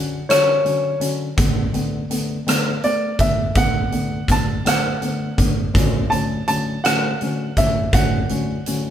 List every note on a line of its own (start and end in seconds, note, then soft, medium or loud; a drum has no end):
0.00 0.18 D3 medium
0.00 0.19 F#3 soft
0.00 0.19 C#4 medium
0.00 0.26 F#5 medium
0.29 0.55 D3 medium
0.29 0.55 F#3 medium
0.29 0.55 C#4 medium
0.29 1.06 C#5 medium
0.29 cross-stick medium
0.29 closed hi-hat medium
0.64 0.91 D3 medium
0.64 0.91 F#3 medium
0.64 0.91 C#4 medium
0.64 closed hi-hat soft
1.00 1.26 D3 medium
1.00 1.27 F#3 medium
1.00 1.27 C#4 medium
1.00 closed hi-hat medium
1.37 1.63 D3 medium
1.37 1.63 A3 medium
1.37 1.63 B3 medium
1.37 kick medium
1.37 closed hi-hat medium
1.73 1.99 D3 medium
1.73 2.00 A3 medium
1.73 2.00 B3 medium
1.73 closed hi-hat soft
2.10 2.36 D3 medium
2.10 2.36 A3 medium
2.10 2.36 B3 medium
2.10 closed hi-hat medium
2.46 2.72 D3 medium
2.46 2.73 A3 medium
2.46 2.73 B3 medium
2.46 cross-stick medium
2.46 closed hi-hat medium
2.83 3.09 A3 medium
2.83 3.09 B3 medium
2.83 3.21 D5 medium
2.83 closed hi-hat soft
3.19 3.45 D3 medium
3.19 3.45 A3 medium
3.19 3.46 B3 medium
3.19 3.57 E5 medium
3.19 kick medium
3.19 closed hi-hat medium
3.55 3.81 D3 medium
3.55 3.81 A3 medium
3.55 3.82 B3 medium
3.55 4.25 F#5 medium
3.55 kick medium
3.55 closed hi-hat medium
3.92 4.18 D3 medium
3.92 4.18 A3 medium
3.92 4.18 B3 medium
3.92 closed hi-hat soft
4.28 4.55 D3 medium
4.28 4.55 A3 soft
4.28 4.55 B3 medium
4.28 4.68 A5 medium
4.28 kick medium
4.28 closed hi-hat medium
4.65 4.91 D3 medium
4.65 4.91 A3 medium
4.65 4.91 B3 medium
4.65 5.45 F#5 medium
4.65 cross-stick medium
4.65 closed hi-hat medium
5.01 5.27 D3 medium
5.01 5.28 A3 soft
5.01 5.28 B3 medium
5.01 closed hi-hat soft
5.38 5.64 D3 medium
5.38 5.64 A3 soft
5.38 5.64 B3 medium
5.38 kick medium
5.38 closed hi-hat medium
5.74 6.00 A2 medium
5.74 6.00 D3 medium
5.74 6.01 F#3 medium
5.74 6.01 C#4 medium
5.74 kick medium
5.74 closed hi-hat medium
6.10 6.37 A2 medium
6.10 6.37 D3 medium
6.10 6.37 F#3 medium
6.10 6.37 C#4 medium
6.10 6.46 A5 medium
6.10 closed hi-hat soft
6.48 6.74 A2 medium
6.48 6.74 D3 soft
6.48 6.74 F#3 soft
6.48 6.74 C#4 medium
6.48 6.85 A5 medium
6.48 closed hi-hat medium
6.84 7.10 A2 medium
6.84 7.11 D3 medium
6.84 7.11 F#3 medium
6.84 7.10 C#4 medium
6.84 7.59 F#5 medium
6.84 cross-stick medium
6.84 closed hi-hat medium
7.21 7.47 A2 medium
7.21 7.47 D3 medium
7.21 7.47 F#3 medium
7.21 7.47 C#4 medium
7.21 closed hi-hat soft
7.57 7.83 A2 medium
7.57 7.83 D3 medium
7.57 7.83 F#3 soft
7.57 7.83 C#4 medium
7.57 7.94 E5 medium
7.57 kick medium
7.57 closed hi-hat medium
7.93 8.19 A2 medium
7.93 8.19 D3 medium
7.93 8.19 F#3 medium
7.93 8.19 C#4 medium
7.93 8.90 F#5 medium
7.93 kick medium
7.93 closed hi-hat medium
8.29 8.55 A2 medium
8.29 8.55 D3 medium
8.29 8.55 F#3 medium
8.29 8.56 C#4 medium
8.29 closed hi-hat soft
8.66 8.90 A2 medium
8.66 8.90 D3 soft
8.66 8.90 F#3 medium
8.66 8.90 C#4 medium
8.66 closed hi-hat medium